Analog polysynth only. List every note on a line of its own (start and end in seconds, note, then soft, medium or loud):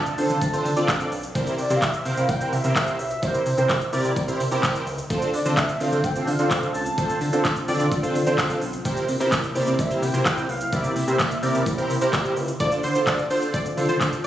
0.18 0.37 C4 medium
0.18 0.37 D4 medium
0.18 0.38 F4 medium
0.18 0.38 A4 medium
0.18 0.38 C5 medium
0.53 0.66 C4 medium
0.53 0.66 D4 medium
0.53 0.66 F4 medium
0.53 0.66 A4 medium
0.53 0.66 C5 loud
0.76 1.09 C4 medium
0.76 1.09 D4 medium
0.76 1.09 F4 medium
0.76 1.09 A4 medium
0.76 1.09 D5 loud
1.35 1.54 C4 medium
1.35 1.55 E4 medium
1.35 1.55 G4 medium
1.35 1.55 A#4 medium
1.35 1.55 C5 loud
1.70 1.90 C4 medium
1.70 1.90 E4 medium
1.70 1.90 G4 medium
1.70 1.90 A#4 medium
1.70 1.90 C5 medium
2.05 2.25 C4 medium
2.05 2.25 E4 medium
2.05 2.25 G4 medium
2.05 2.25 A#4 medium
2.05 2.25 C5 medium
2.40 2.53 C4 medium
2.40 2.54 E4 medium
2.40 2.54 G4 medium
2.40 2.54 A#4 medium
2.40 2.54 C5 medium
2.64 2.96 C4 medium
2.64 2.96 E4 medium
2.64 2.96 G4 medium
2.64 2.96 A#4 medium
2.64 2.96 C5 medium
3.22 3.42 C4 medium
3.22 3.42 E4 medium
3.22 3.42 G4 medium
3.22 3.42 A#4 medium
3.22 3.42 C5 medium
3.57 3.77 C4 medium
3.57 3.77 E4 medium
3.57 3.77 G4 medium
3.57 3.77 A#4 medium
3.57 3.77 C5 medium
3.93 4.12 C4 medium
3.93 4.12 E4 medium
3.93 4.12 G4 medium
3.93 4.12 A#4 medium
3.93 4.12 D5 loud
4.28 4.41 C4 medium
4.28 4.41 E4 medium
4.28 4.41 G4 medium
4.28 4.41 A#4 medium
4.28 4.41 C5 loud
4.51 4.84 C4 medium
4.51 4.84 E4 medium
4.51 4.84 G4 medium
4.51 4.84 A#4 medium
4.51 4.84 C5 loud
5.10 5.29 C4 medium
5.10 5.30 D4 medium
5.10 5.30 F4 medium
5.10 5.30 A4 medium
5.10 5.30 C5 medium
5.45 5.65 C4 medium
5.45 5.65 D4 medium
5.45 5.65 F4 medium
5.45 5.65 A4 medium
5.45 5.65 C5 medium
5.81 6.00 C4 medium
5.81 6.00 D4 medium
5.81 6.00 F4 medium
5.81 6.00 A4 medium
5.81 6.00 C5 medium
6.16 6.29 C4 medium
6.16 6.29 D4 medium
6.16 6.29 F4 medium
6.16 6.29 A4 medium
6.16 6.29 C5 medium
6.39 6.71 C4 medium
6.39 6.72 D4 medium
6.39 6.72 F4 medium
6.39 6.72 A4 medium
6.39 6.72 C5 medium
6.98 7.17 C4 medium
6.98 7.17 D4 medium
6.98 7.17 F4 medium
6.98 7.17 A4 medium
6.98 7.17 C5 medium
7.33 7.52 C4 medium
7.33 7.52 D4 medium
7.33 7.52 F4 medium
7.33 7.52 A4 medium
7.33 7.52 C5 medium
7.68 7.87 C4 loud
7.68 7.87 D4 medium
7.68 7.87 F4 medium
7.68 7.88 A4 medium
7.68 7.88 D5 loud
8.03 8.16 C4 medium
8.03 8.16 D4 medium
8.03 8.16 F4 medium
8.03 8.16 A4 medium
8.03 8.16 C5 loud
8.27 8.59 C4 medium
8.27 8.59 D4 medium
8.27 8.59 F4 medium
8.27 8.59 A4 medium
8.27 8.59 C5 loud
8.85 9.04 C4 medium
8.85 9.05 E4 medium
8.85 9.05 G4 medium
8.85 9.05 A#4 medium
8.85 9.05 C5 loud
9.20 9.40 C4 medium
9.20 9.40 E4 medium
9.20 9.40 G4 medium
9.20 9.40 A#4 medium
9.20 9.40 C5 loud
9.55 9.75 C4 medium
9.55 9.75 E4 medium
9.55 9.75 G4 medium
9.55 9.75 A#4 medium
9.55 9.75 D5 medium
9.90 10.03 C4 medium
9.90 10.03 E4 medium
9.90 10.04 G4 medium
9.90 10.04 A#4 medium
9.90 10.04 C5 medium
10.14 10.46 C4 medium
10.14 10.46 E4 medium
10.14 10.46 G4 medium
10.14 10.46 A#4 medium
10.14 10.46 C5 medium
10.72 10.92 C4 medium
10.72 10.92 E4 medium
10.72 10.92 G4 medium
10.72 10.92 A#4 medium
10.72 10.92 D5 medium
11.07 11.27 C4 medium
11.07 11.27 E4 medium
11.07 11.27 G4 medium
11.07 11.27 A#4 medium
11.07 11.27 C5 medium
11.42 11.62 C4 medium
11.42 11.62 E4 medium
11.42 11.62 G4 medium
11.42 11.62 A#4 medium
11.42 11.62 D5 loud
11.78 11.91 C4 medium
11.78 11.91 E4 medium
11.78 11.91 G4 medium
11.78 11.91 A#4 medium
11.78 11.91 C5 loud
12.01 12.34 C4 medium
12.01 12.34 E4 medium
12.01 12.34 G4 medium
12.01 12.34 A#4 medium
12.01 12.34 C5 loud
12.60 12.79 D4 medium
12.60 12.79 F4 medium
12.60 12.80 A4 medium
12.60 12.80 C5 medium
12.95 13.15 D4 medium
12.95 13.15 F4 medium
12.95 13.15 A4 medium
12.95 13.15 C5 medium
13.30 13.56 D4 medium
13.30 13.56 F4 medium
13.30 13.56 A4 medium
13.30 13.56 C5 medium
13.77 14.10 D4 medium
13.77 14.10 F4 medium
13.77 14.10 A4 medium
13.77 14.10 C5 medium